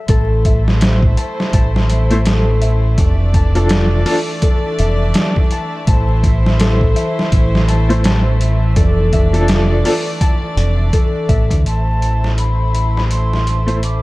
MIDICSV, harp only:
0, 0, Header, 1, 2, 480
1, 0, Start_track
1, 0, Key_signature, 0, "minor"
1, 0, Tempo, 722892
1, 58, Time_signature, 4, 2, 24, 8
1, 9310, End_track
2, 0, Start_track
2, 0, Title_t, "Harp"
2, 0, Program_c, 0, 46
2, 0, Note_on_c, 0, 74, 79
2, 0, Note_on_c, 0, 76, 74
2, 62, Note_on_c, 0, 69, 81
2, 301, Note_off_c, 0, 76, 0
2, 303, Note_on_c, 0, 76, 70
2, 324, Note_off_c, 0, 74, 0
2, 778, Note_on_c, 0, 81, 69
2, 1016, Note_off_c, 0, 81, 0
2, 1019, Note_on_c, 0, 81, 77
2, 1448, Note_off_c, 0, 76, 0
2, 1493, Note_off_c, 0, 69, 0
2, 1496, Note_on_c, 0, 69, 71
2, 1737, Note_on_c, 0, 76, 69
2, 1981, Note_off_c, 0, 81, 0
2, 2220, Note_on_c, 0, 81, 69
2, 2458, Note_off_c, 0, 81, 0
2, 2461, Note_on_c, 0, 81, 69
2, 2881, Note_off_c, 0, 76, 0
2, 2937, Note_off_c, 0, 69, 0
2, 2940, Note_on_c, 0, 69, 80
2, 3181, Note_on_c, 0, 76, 75
2, 3423, Note_off_c, 0, 81, 0
2, 3666, Note_on_c, 0, 81, 75
2, 3899, Note_off_c, 0, 81, 0
2, 3902, Note_on_c, 0, 81, 79
2, 4325, Note_off_c, 0, 76, 0
2, 4383, Note_off_c, 0, 69, 0
2, 4385, Note_on_c, 0, 69, 74
2, 4621, Note_on_c, 0, 76, 70
2, 4864, Note_off_c, 0, 81, 0
2, 5100, Note_on_c, 0, 81, 71
2, 5342, Note_off_c, 0, 81, 0
2, 5345, Note_on_c, 0, 81, 72
2, 5765, Note_off_c, 0, 76, 0
2, 5816, Note_off_c, 0, 69, 0
2, 5819, Note_on_c, 0, 69, 82
2, 6063, Note_on_c, 0, 76, 74
2, 6307, Note_off_c, 0, 81, 0
2, 6544, Note_on_c, 0, 81, 76
2, 6777, Note_off_c, 0, 81, 0
2, 6780, Note_on_c, 0, 81, 84
2, 7207, Note_off_c, 0, 76, 0
2, 7257, Note_off_c, 0, 69, 0
2, 7259, Note_on_c, 0, 69, 75
2, 7496, Note_on_c, 0, 76, 72
2, 7742, Note_off_c, 0, 81, 0
2, 8640, Note_off_c, 0, 76, 0
2, 8717, Note_off_c, 0, 69, 0
2, 9310, End_track
0, 0, End_of_file